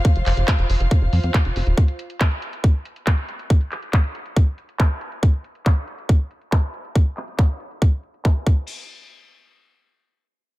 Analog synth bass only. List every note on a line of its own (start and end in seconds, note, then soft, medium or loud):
0.16 0.22 F1 medium
0.26 0.33 F1 loud
0.37 0.44 F1 medium
0.59 0.66 F1 medium
0.70 0.76 F1 loud
0.80 0.87 F1 medium
1.02 1.09 F1 medium
1.13 1.20 F2 loud
1.24 1.30 F2 medium
1.45 1.52 F1 medium
1.56 1.63 F1 medium
1.67 1.73 D#1 medium